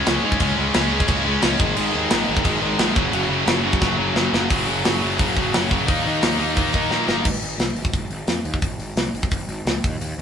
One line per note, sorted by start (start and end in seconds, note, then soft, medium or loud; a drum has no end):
0.06 0.18 C#2 medium
0.06 0.24 C#3 medium
0.06 0.24 G#3 medium
0.06 0.23 C#4 loud
0.06 snare loud
0.06 crash medium
0.24 0.35 G#2 medium
0.24 0.39 C#3 medium
0.24 0.41 G#3 medium
0.24 0.40 C#4 medium
0.32 kick medium
0.40 0.52 C#2 medium
0.40 0.56 C#3 loud
0.40 0.57 G#3 loud
0.40 0.55 C#4 loud
0.40 kick loud
0.40 crash medium
0.56 0.69 C#2 medium
0.56 0.72 C#3 medium
0.56 0.73 G#3 loud
0.56 0.73 C#4 medium
0.73 0.98 C#2 loud
0.73 0.91 C#3 medium
0.73 0.91 G#3 medium
0.73 0.90 C#4 loud
0.73 snare loud
0.73 crash medium
0.91 1.06 C#3 medium
0.91 1.06 G#3 loud
0.91 1.06 C#4 loud
1.00 kick loud
1.07 1.21 C#2 medium
1.07 1.25 C#3 medium
1.07 1.24 G#3 medium
1.07 1.23 C#4 medium
1.07 kick loud
1.07 crash medium
1.25 1.37 C#2 medium
1.25 1.40 C#3 medium
1.25 1.40 G#3 loud
1.25 1.41 C#4 loud
1.41 1.55 C#2 medium
1.41 1.58 C#3 medium
1.41 1.58 G#3 medium
1.41 1.58 C#4 loud
1.41 snare loud
1.41 crash medium
1.59 1.71 G#1 loud
1.59 1.75 G#2 loud
1.59 1.75 D#3 loud
1.59 1.75 G#3 loud
1.59 kick loud
1.76 1.89 G#1 loud
1.76 1.90 G#2 medium
1.76 1.91 D#3 medium
1.76 1.91 G#3 loud
1.76 crash medium
1.91 2.06 D#2 medium
1.91 2.10 G#2 medium
1.91 2.10 D#3 medium
1.91 2.09 G#3 loud
2.10 2.23 G#1 loud
2.10 2.26 G#2 medium
2.10 2.26 D#3 medium
2.10 2.27 G#3 medium
2.10 snare loud
2.10 crash medium
2.27 2.40 G#1 medium
2.27 2.43 G#2 loud
2.27 2.43 D#3 loud
2.27 2.43 G#3 loud
2.37 kick medium
2.44 2.56 G#1 loud
2.44 2.60 G#2 medium
2.44 2.60 D#3 medium
2.44 2.60 G#3 medium
2.44 kick medium
2.44 crash medium
2.61 2.74 G#1 loud
2.61 2.78 G#2 loud
2.61 2.78 D#3 loud
2.61 2.78 G#3 loud
2.78 2.90 G#1 loud
2.78 2.95 G#2 medium
2.78 2.95 D#3 medium
2.78 2.95 G#3 medium
2.78 snare loud
2.78 crash medium
2.95 3.08 F#1 medium
2.95 3.12 F#2 medium
2.95 3.11 C#3 loud
2.95 3.11 F#3 loud
2.95 kick loud
3.12 3.25 F#1 loud
3.12 3.28 F#2 medium
3.12 3.28 C#3 loud
3.12 3.29 F#3 loud
3.12 crash medium
3.29 3.41 F#1 medium
3.29 3.45 F#2 medium
3.29 3.45 C#3 loud
3.29 3.45 F#3 loud
3.46 3.70 F#1 loud
3.46 3.60 F#2 medium
3.46 3.61 C#3 medium
3.46 3.61 F#3 loud
3.46 snare loud
3.46 crash medium
3.61 3.79 F#2 loud
3.61 3.79 C#3 loud
3.61 3.79 F#3 loud
3.73 kick medium
3.80 3.94 F#1 loud
3.80 3.96 F#2 medium
3.80 3.97 C#3 medium
3.80 3.98 F#3 medium
3.80 kick loud
3.80 snare medium
3.97 4.10 F#1 medium
3.97 4.15 F#2 medium
3.97 4.14 C#3 loud
3.97 4.14 F#3 loud
4.14 4.26 F#1 loud
4.14 4.31 F#2 medium
4.14 4.31 C#3 medium
4.14 4.32 F#3 loud
4.14 snare loud
4.32 4.45 F#1 medium
4.32 4.48 F#2 medium
4.32 4.48 C#3 medium
4.32 4.49 F#3 loud
4.32 snare loud
4.50 4.66 F#1 medium
4.50 4.66 F#2 medium
4.50 4.65 C#3 loud
4.50 4.65 F#3 loud
4.50 kick loud
4.50 open hi-hat medium
4.66 4.83 F#1 medium
4.66 4.82 F#2 medium
4.66 4.82 C#3 medium
4.66 4.83 F#3 loud
4.83 5.01 F#1 loud
4.83 5.00 F#2 medium
4.83 5.00 C#3 medium
4.83 5.00 F#3 loud
4.83 snare loud
4.83 open hi-hat medium
5.01 5.18 F#1 medium
5.01 5.17 F#2 medium
5.01 5.17 C#3 medium
5.01 5.17 F#3 medium
5.18 5.35 F#1 loud
5.18 5.35 F#2 medium
5.18 5.34 C#3 medium
5.18 5.33 F#3 medium
5.18 kick loud
5.18 open hi-hat medium
5.34 5.52 F#1 medium
5.34 5.52 F#2 medium
5.34 5.52 C#3 medium
5.34 5.52 F#3 medium
5.34 kick medium
5.53 5.85 F#1 medium
5.53 5.69 F#2 medium
5.53 5.69 C#3 loud
5.53 5.69 F#3 loud
5.53 snare loud
5.53 open hi-hat medium
5.71 5.87 F#2 medium
5.71 5.86 C#3 medium
5.71 5.87 F#3 medium
5.71 kick medium
5.86 6.04 D#2 loud
5.86 6.04 D#3 medium
5.86 6.03 A#3 medium
5.86 6.03 D#4 loud
5.86 kick loud
5.86 open hi-hat medium
6.04 6.21 D#2 medium
6.04 6.21 D#3 medium
6.04 6.21 A#3 medium
6.04 6.22 D#4 loud
6.22 6.38 D#2 medium
6.22 6.38 D#3 medium
6.22 6.38 A#3 loud
6.22 6.37 D#4 loud
6.22 snare loud
6.22 open hi-hat medium
6.39 6.55 D#2 medium
6.39 6.54 D#3 medium
6.39 6.55 A#3 medium
6.39 6.55 D#4 medium
6.56 6.72 D#2 medium
6.56 6.73 D#3 medium
6.56 6.73 A#3 medium
6.56 6.72 D#4 medium
6.56 kick loud
6.56 open hi-hat medium
6.73 6.89 D#2 medium
6.73 6.89 D#3 medium
6.73 6.89 A#3 medium
6.73 6.90 D#4 medium
6.73 kick medium
6.90 7.06 A#2 medium
6.90 7.07 D#3 medium
6.90 7.06 A#3 loud
6.90 7.06 D#4 loud
6.90 snare medium
7.07 7.24 G1 medium
7.07 7.24 D#3 medium
7.07 7.24 A#3 medium
7.07 7.24 D#4 medium
7.07 snare medium
7.25 7.37 G#1 medium
7.25 kick loud
7.25 crash medium
7.42 7.54 G#1 medium
7.42 open hi-hat soft
7.58 7.70 C2 medium
7.58 snare loud
7.58 open hi-hat medium
7.75 7.87 G#1 medium
7.75 open hi-hat soft
7.85 kick medium
7.94 8.05 G#1 medium
7.94 kick medium
7.94 open hi-hat medium
8.10 8.22 G#1 medium
8.10 open hi-hat soft
8.28 8.39 F2 medium
8.28 snare loud
8.28 open hi-hat medium
8.45 8.57 D#2 medium
8.45 open hi-hat soft
8.54 kick medium
8.62 8.74 G#1 medium
8.62 kick medium
8.62 open hi-hat medium
8.79 8.91 G#1 medium
8.79 open hi-hat soft
8.96 9.08 C2 medium
8.96 snare loud
8.96 open hi-hat medium
9.14 9.26 G#1 medium
9.14 open hi-hat soft
9.23 kick medium
9.31 9.44 G#1 medium
9.31 kick medium
9.31 open hi-hat medium
9.48 9.60 G#1 medium
9.48 open hi-hat soft
9.65 9.77 C#2 medium
9.65 snare loud
9.65 open hi-hat medium
9.84 9.95 D#2 medium
9.84 kick loud
9.84 open hi-hat medium
10.01 10.13 D#2 medium
10.01 open hi-hat medium
10.18 10.22 D#2 medium